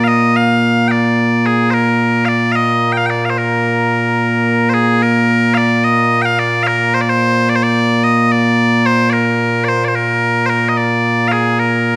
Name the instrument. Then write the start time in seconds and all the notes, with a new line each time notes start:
bagpipes
Already playing: A#2 A#3
0.04 D#5 F5
0.36 F5
0.88 D5 G5
1.46 G#4
1.71 A#4 C5
2.25 D5 F5
2.52 D#5 F5
2.92 G5
2.97 F5
3.06 G5
3.10 D5
3.25 F5
3.30 C5
3.38 A#4
4.70 C5
4.74 G#4
5.02 A#4
5.54 D5 F5
5.84 D#5
6.22 F5 G5
6.39 D5
6.63 A#4 F5
6.94 C5
7.01 D5
7.09 C5
7.49 D5
7.55 C5
7.63 D5
8.04 D#5
8.32 D5
8.86 C5
9.10 A#4 D5
9.64 C5 D5
9.84 C5 D5
9.95 A#4
10.46 A#4 C5
10.69 D#5
10.77 D5
11.28 G#4 F5
11.59 A#4